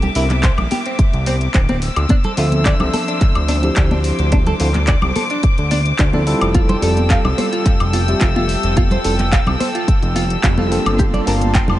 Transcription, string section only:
Already playing: A#3 E5 D6
1.82 C5 E6
4.05 D6
6.55 A4 G5 E6
10.99 A#3 F5 A5 C6

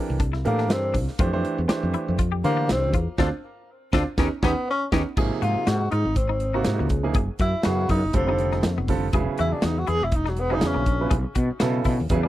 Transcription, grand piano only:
Already playing: E3 D4 G4 A4 A#4
0.45 E3 D4 G4 A4 A#4
1.20 E3 A3 D4 G4 C5
1.33 E3 A3 D4 G4 C5
1.68 E3 A3 D4 G4 C5
2.44 E3 A3 D4 G4 C5
3.18 C4 D4 F4
3.93 C4 D4 F4
4.18 B3 C#4 D#4
4.43 B3 C#4 D#4
4.92 B3 C#4 D#4
5.17 C3 F3 A#3 D#4 G#4
6.55 C3 A#3 D#4 F4 F#4
7.03 C3 F3 A#3 D#4 G#4
7.64 C#3 F#3 B3 E4 G#4
8.13 D3 G3 C4 F4 A4
8.27 D3 G3 C4 F4 A4
8.89 D3 G3 C4 F4 A4
9.13 C#3 F#3 B3 E4 G#4
10.51 C#3 F#3 B3 E4 G#4
11.01 C#3 F#3 B3 E4 B4
11.61 C#3 F#3 B3 E4 A4
12.11 C#3 F#3 B3 E4 G#4
12.24 C#3 F#3 B3 G#4

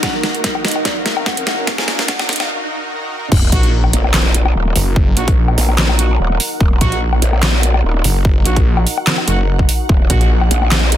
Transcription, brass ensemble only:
3.52 A#3 D#4 F#4
5.17 A#3 D#4 F#4
5.99 A#3 D#4 F#4
6.81 A#3 D#4 F#4
8.45 A#3 D#4 F#4
9.28 A#3 D#4 F#4
10.10 A#3 D#4 F#4

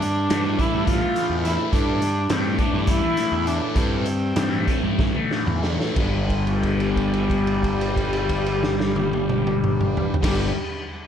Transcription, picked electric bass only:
Already playing: G2
0.31 G2
0.73 G2
1.30 E2
1.73 G2
2.30 G2
2.73 G2
3.32 E2
3.75 G2
4.36 G2
4.83 G2
5.47 E2
5.97 G1
10.23 G1

